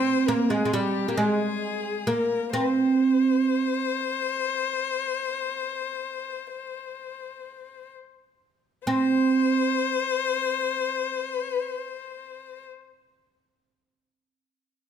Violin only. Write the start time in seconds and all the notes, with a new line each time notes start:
Already playing: C5
0.27 A#4
0.50 G#4
0.73 G4
1.18 G#4
2.08 A#4
2.54 C5
8.86 C5